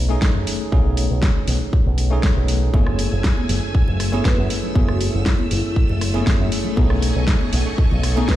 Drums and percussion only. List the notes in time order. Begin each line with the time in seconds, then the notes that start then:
0.22 kick, snare
0.47 open hi-hat
0.72 kick
0.97 open hi-hat
1.22 kick, snare
1.48 open hi-hat
1.73 kick
1.98 open hi-hat
2.23 kick, snare
2.48 open hi-hat
2.74 kick, high conga
2.86 cross-stick
2.99 open hi-hat
3.24 kick, snare
3.37 high conga
3.49 open hi-hat
3.75 kick
3.88 low conga
4.00 cross-stick, open hi-hat
4.13 high conga
4.25 kick, snare
4.50 open hi-hat
4.63 low conga
4.75 kick, high conga
4.88 cross-stick
5.01 open hi-hat
5.26 kick, snare
5.39 high conga
5.51 open hi-hat
5.76 kick
5.89 low conga
6.01 cross-stick, open hi-hat
6.14 high conga
6.27 kick, snare
6.52 open hi-hat
6.64 low conga
6.77 kick, high conga
6.90 cross-stick
7.02 open hi-hat
7.28 kick, snare
7.41 high conga
7.53 open hi-hat
7.78 kick
7.91 low conga
8.03 cross-stick, open hi-hat
8.17 high conga
8.29 kick, snare